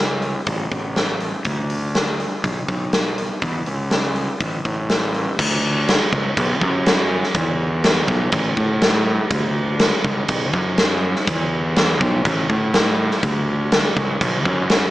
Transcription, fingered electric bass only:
Already playing: C#2
0.47 A1
0.72 A1
1.45 D2
2.44 B1
2.68 B1
3.42 E2
3.67 C#2
4.40 A1
4.65 A1
5.39 D2
6.12 C#2
6.37 B1
6.62 F#2
7.35 E2
8.08 B1
8.33 A1
8.57 A2
9.31 D2
10.04 C#2
10.29 B1
10.54 F#2
11.27 E2
12.01 B1
12.25 A1
12.50 A2
13.23 D2
13.96 C#2
14.21 B1
14.45 F#2

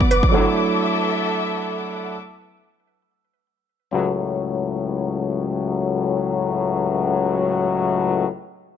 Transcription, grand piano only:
Already playing: F#3 B3 D4 F#4
0.29 F#3 A3
0.35 D4 E4

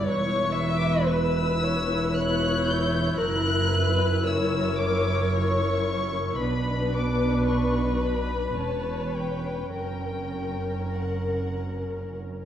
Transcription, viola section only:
0.07 E4 B4
3.19 A#4
6.39 D4 B4
8.56 C#4 C#5
9.74 A#4

